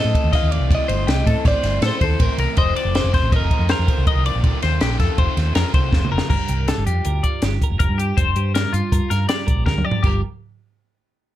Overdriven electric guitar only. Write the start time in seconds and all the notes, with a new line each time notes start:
Already playing: A2 E3 A3 C4 E4
0.33 A2 E3 A3 C4 E4
0.52 A3 C4 E4
0.70 A2 E3 A3 C4 E4
0.90 A3 C4 E4
1.07 A2 E3 A3 C4 E4
1.26 A3 C4 E4
1.63 A3 C4 E4
1.81 E3 A3 C4 E4
2.19 A2 E3 A3 C4 E4
2.39 A3 C4 E4
2.58 F2 C3 D#3 A3 C4 F4
2.76 D#3 A3 C4 F4
2.96 F2 C3 D#3 A3 C4 F4
3.14 D#3 A3 C4 F4
3.51 D#3 A3 C4 F4
3.69 D#3 A3 C4 F4
4.07 F2 C3 D#3 A3 C4 F4
4.26 D#3 A3 C4 F4
4.44 F2 C3 D#3 A3 C4 F4
4.63 D#3 A3 C4 F4
4.81 F2 C3 D#3 A3 C4 F4
5.00 D#3 A3 C4 F4
5.36 D#3 A3 C4 F4
5.56 D#3 A3 C4 F4
5.93 F2 C3 D#3 A3 C4 F4
6.11 D#3 A3 C4 F4